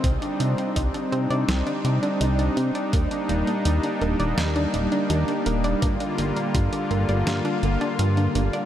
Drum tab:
HH |xxxxxxxxxxxxxxxx|xxxxxxxxxxxxxxxx|xxxxxxxxxxxxxxxx|
SD |--------o-------|--------o-------|--------o-------|
BD |o---o-----------|o---------------|o---o-----------|